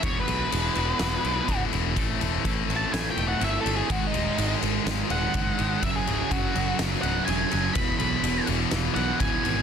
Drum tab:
RD |xxxxxxxx|xxxxxxxx|xxxxxxxx|xxxxxxxx|
SD |----o---|----o---|----o---|----o---|
BD |o-----o-|o-o-----|o-----o-|o-o-----|

RD |xxxxxxxx|
SD |----o---|
BD |o-----o-|